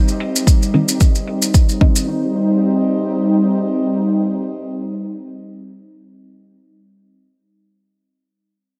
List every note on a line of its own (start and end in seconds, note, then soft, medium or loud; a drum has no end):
0.00 1.77 G3 medium
0.00 1.77 C4 medium
0.00 1.77 D#4 medium
0.08 maracas soft
0.20 closed hi-hat medium
0.36 maracas medium
0.47 kick loud
0.47 maracas medium
0.63 maracas soft
0.74 0.83 D#3 medium
0.74 0.83 G3 medium
0.74 0.83 C4 medium
0.74 0.83 D#4 medium
0.74 closed hi-hat medium
0.88 maracas medium
1.00 kick loud
1.00 maracas medium
1.15 maracas soft
1.27 closed hi-hat medium
1.42 closed hi-hat soft
1.42 maracas medium
1.54 kick loud
1.54 maracas medium
1.69 maracas soft
1.81 6.31 D#3 medium
1.81 6.31 G3 medium
1.81 6.31 C4 medium
1.81 6.31 D#4 medium
1.81 kick loud
1.96 maracas medium